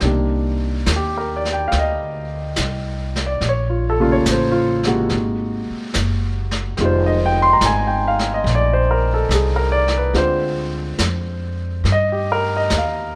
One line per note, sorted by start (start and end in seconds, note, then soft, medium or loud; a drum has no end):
0.00 0.84 C2 medium
0.00 0.55 C3 soft
0.00 0.55 D#3 soft
0.00 0.55 D4 soft
0.00 0.21 G4 soft
0.00 brush sweep soft
0.00 snare soft
0.05 0.56 A#3 soft
0.86 1.69 D#2 medium
0.86 snare soft
0.86 hi-hat pedal soft
0.96 1.20 G4 medium
1.18 1.45 A#4 medium
1.36 1.39 D5 medium
1.45 snare soft
1.53 1.68 G5 medium
1.68 1.74 F5 medium
1.68 brush sweep soft
1.68 snare soft
1.72 2.55 D2 medium
1.79 2.12 D#5 medium
2.56 3.39 C2 medium
2.56 snare soft
2.56 hi-hat pedal soft
3.16 snare soft
3.26 3.40 D5 medium
3.41 4.23 A#1 medium
3.41 brush sweep soft
3.41 snare soft
3.49 3.74 C#5 medium
3.70 3.98 F4 soft
3.90 4.08 A4 medium
4.00 4.79 C#3 medium
4.00 4.79 G3 medium
4.00 4.79 A#3 medium
4.00 4.50 F4 medium
4.12 4.26 C#5 medium
4.25 5.08 A1 medium
4.25 snare soft
4.25 hi-hat pedal medium
4.31 4.57 C5 medium
4.52 4.70 F4 medium
4.83 5.91 G#3 soft
4.83 snare soft
4.87 5.91 C3 medium
4.87 5.91 A#3 soft
4.87 5.91 F#4 medium
5.09 5.64 G#1 medium
5.09 brush sweep soft
5.09 snare soft
5.70 muted upright bass stroke soft
5.94 6.76 F#1 medium
5.94 snare soft
5.94 hi-hat pedal soft
6.51 snare soft
6.77 7.60 F1 medium
6.77 7.31 D#3 soft
6.77 7.30 G3 soft
6.77 7.31 G#3 medium
6.77 7.31 F4 medium
6.77 brush sweep soft
6.77 snare soft
6.85 7.10 C5 medium
7.06 7.34 D#5 medium
7.26 7.29 G5 medium
7.42 7.57 C6 medium
7.53 7.62 A#5 medium
7.61 8.43 G#1 medium
7.61 snare soft
7.61 hi-hat pedal soft
7.66 7.92 G#5 medium
7.87 8.17 G5 medium
8.08 8.26 F5 medium
8.19 snare soft
8.34 8.46 D#5 medium
8.44 9.27 A#1 medium
8.44 brush sweep soft
8.44 snare soft
8.55 8.79 D5 medium
8.73 9.02 C5 medium
8.91 9.10 A#4 medium
9.14 9.28 A4 medium
9.29 10.11 C2 medium
9.29 snare soft
9.29 hi-hat pedal soft
9.34 9.60 G#4 medium
9.56 9.86 A#4 medium
9.72 9.93 D5 medium
9.88 snare soft
9.97 10.12 B4 medium
10.13 10.96 D2 medium
10.13 10.67 D3 soft
10.13 10.66 G#3 soft
10.13 10.67 C4 soft
10.13 10.67 F4 soft
10.13 brush sweep soft
10.13 snare soft
10.18 10.52 C5 medium
10.98 11.82 F2 medium
10.98 snare medium
10.98 hi-hat pedal soft
11.84 12.68 G2 medium
11.84 brush sweep soft
11.84 snare soft
11.92 12.18 D#5 medium
12.12 12.42 G4 soft
12.32 12.51 A#4 medium
12.57 12.70 D#5 medium
12.70 13.15 D#2 medium
12.70 snare soft
12.70 hi-hat pedal soft
12.78 13.11 F5 medium